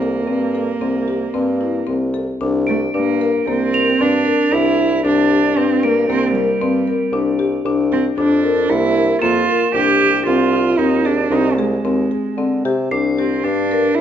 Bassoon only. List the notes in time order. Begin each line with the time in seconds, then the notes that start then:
Already playing: C2
0.29 G2
0.81 C2
1.34 G2
1.88 C2
2.41 C2
2.94 G2
3.47 C2
4.00 G2
4.52 C2
5.04 C2
5.56 G2
6.09 C2
6.61 G2
7.12 C2
7.65 C2
8.17 F2
8.69 C2
9.22 F2
9.74 C2
10.26 C2
10.78 D#2
11.30 C2
11.84 D#2
12.37 D3
12.64 C3
12.91 C2
13.44 G2